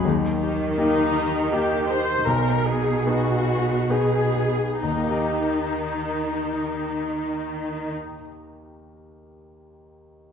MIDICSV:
0, 0, Header, 1, 5, 480
1, 0, Start_track
1, 0, Tempo, 741656
1, 27, Time_signature, 3, 2, 24, 8
1, 1468, Tempo, 788436
1, 1948, Tempo, 849858
1, 2428, Tempo, 925926
1, 5754, End_track
2, 0, Start_track
2, 0, Title_t, "Viola section"
2, 0, Program_c, 0, 48
2, 512, Note_on_c, 0, 63, 53
2, 959, Note_off_c, 0, 63, 0
2, 982, Note_on_c, 0, 67, 54
2, 1218, Note_off_c, 0, 67, 0
2, 1223, Note_on_c, 0, 72, 58
2, 1469, Note_off_c, 0, 72, 0
2, 1471, Note_on_c, 0, 70, 52
2, 1706, Note_off_c, 0, 70, 0
2, 1710, Note_on_c, 0, 68, 57
2, 1950, Note_off_c, 0, 68, 0
2, 1950, Note_on_c, 0, 66, 57
2, 2429, Note_off_c, 0, 66, 0
2, 2434, Note_on_c, 0, 68, 52
2, 2902, Note_on_c, 0, 63, 37
2, 2908, Note_off_c, 0, 68, 0
2, 4507, Note_off_c, 0, 63, 0
2, 5754, End_track
3, 0, Start_track
3, 0, Title_t, "Grand piano"
3, 0, Program_c, 1, 0
3, 0, Control_c, 1, 64, 127
3, 31, Note_on_c, 1, 39, 36
3, 41, Control_c, 1, 64, 0
3, 146, Control_c, 1, 64, 127
3, 490, Note_off_c, 1, 39, 0
3, 502, Note_on_c, 1, 58, 27
3, 505, Note_on_c, 1, 63, 27
3, 508, Note_on_c, 1, 67, 29
3, 954, Note_off_c, 1, 58, 0
3, 956, Note_off_c, 1, 63, 0
3, 958, Note_off_c, 1, 67, 0
3, 982, Note_on_c, 1, 58, 27
3, 984, Note_on_c, 1, 63, 29
3, 987, Note_on_c, 1, 67, 31
3, 1443, Note_off_c, 1, 58, 0
3, 1444, Note_off_c, 1, 63, 0
3, 1445, Note_off_c, 1, 67, 0
3, 1466, Note_on_c, 1, 35, 37
3, 1479, Control_c, 1, 64, 0
3, 1580, Control_c, 1, 64, 127
3, 1932, Note_off_c, 1, 35, 0
3, 1948, Note_on_c, 1, 59, 29
3, 1950, Note_on_c, 1, 63, 28
3, 1953, Note_on_c, 1, 68, 30
3, 2405, Note_off_c, 1, 59, 0
3, 2406, Note_off_c, 1, 63, 0
3, 2408, Note_off_c, 1, 68, 0
3, 2423, Note_on_c, 1, 59, 28
3, 2426, Note_on_c, 1, 63, 28
3, 2429, Note_on_c, 1, 68, 32
3, 2882, Note_off_c, 1, 59, 0
3, 2884, Note_off_c, 1, 63, 0
3, 2885, Note_off_c, 1, 68, 0
3, 2904, Note_on_c, 1, 39, 22
3, 2918, Control_c, 1, 64, 0
3, 2938, Note_on_c, 1, 51, 23
3, 2978, Note_on_c, 1, 58, 23
3, 3014, Note_on_c, 1, 63, 23
3, 3048, Note_on_c, 1, 67, 24
3, 3052, Control_c, 1, 64, 127
3, 3087, Note_on_c, 1, 75, 25
3, 4510, Note_off_c, 1, 39, 0
3, 4543, Note_off_c, 1, 51, 0
3, 4583, Note_off_c, 1, 58, 0
3, 4620, Note_off_c, 1, 63, 0
3, 4654, Note_off_c, 1, 67, 0
3, 4692, Note_off_c, 1, 75, 0
3, 5754, End_track
4, 0, Start_track
4, 0, Title_t, "Harp"
4, 0, Program_c, 2, 46
4, 0, Note_on_c, 2, 63, 32
4, 35, Note_on_c, 2, 51, 42
4, 279, Note_on_c, 2, 67, 33
4, 507, Note_off_c, 2, 63, 0
4, 515, Note_on_c, 2, 63, 29
4, 749, Note_on_c, 2, 70, 36
4, 980, Note_off_c, 2, 67, 0
4, 988, Note_on_c, 2, 67, 33
4, 1216, Note_off_c, 2, 63, 0
4, 1224, Note_on_c, 2, 63, 31
4, 1471, Note_on_c, 2, 47, 39
4, 1490, Note_off_c, 2, 51, 0
4, 1490, Note_off_c, 2, 67, 0
4, 1490, Note_off_c, 2, 70, 0
4, 1699, Note_off_c, 2, 63, 0
4, 1706, Note_on_c, 2, 63, 32
4, 1952, Note_on_c, 2, 59, 30
4, 2186, Note_on_c, 2, 68, 33
4, 2427, Note_off_c, 2, 63, 0
4, 2434, Note_on_c, 2, 63, 33
4, 2658, Note_off_c, 2, 59, 0
4, 2665, Note_on_c, 2, 59, 25
4, 2909, Note_on_c, 2, 51, 25
4, 2925, Note_off_c, 2, 59, 0
4, 2926, Note_off_c, 2, 47, 0
4, 2926, Note_off_c, 2, 68, 0
4, 2946, Note_on_c, 2, 58, 24
4, 2976, Note_off_c, 2, 63, 0
4, 2982, Note_on_c, 2, 63, 23
4, 3019, Note_on_c, 2, 67, 24
4, 3055, Note_on_c, 2, 75, 24
4, 4587, Note_off_c, 2, 63, 0
4, 4613, Note_off_c, 2, 58, 0
4, 4625, Note_off_c, 2, 67, 0
4, 4660, Note_off_c, 2, 75, 0
4, 4931, Note_off_c, 2, 51, 0
4, 5754, End_track
5, 0, Start_track
5, 0, Title_t, "Cello section"
5, 0, Program_c, 3, 48
5, 34, Note_on_c, 3, 51, 46
5, 1445, Note_off_c, 3, 51, 0
5, 1470, Note_on_c, 3, 47, 39
5, 2749, Note_off_c, 3, 47, 0
5, 2902, Note_on_c, 3, 51, 29
5, 4508, Note_off_c, 3, 51, 0
5, 5754, End_track
0, 0, End_of_file